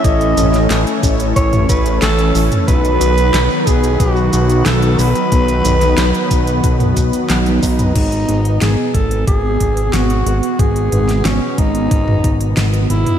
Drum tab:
CC |----------------|----------------|----------------|x---------------|
HH |xxxxxxxxxxxxxxox|xxxxx-xxx-xxxxox|xxxxxxxxxxxxxxox|xxxxx-xxx-xxxxxx|
SH |xxxxxxxxxxxxxxxx|xxxxxxxxxxxxxxxx|xxxxxxxxxxxxxxxx|----------------|
CP |----x-------x---|----x-------x---|----x-------x---|----------------|
SD |---oo-------o---|----o-------o---|---oo-------o---|----o-------o---|
T1 |----------------|----------------|------------oo--|----------------|
T2 |--o------o-----o|----------------|--o------o-----o|----------------|
BD |o-----o-o-o-----|o-----o-o-------|o-----o-o-o---o-|o-----o-o-o-----|

CC |----------------|
HH |xxxxx-xxx-xxxxxx|
SH |----------------|
CP |----------------|
SD |---oo-------o---|
T1 |----------------|
T2 |--o------o-----o|
BD |o-----o-o-o-----|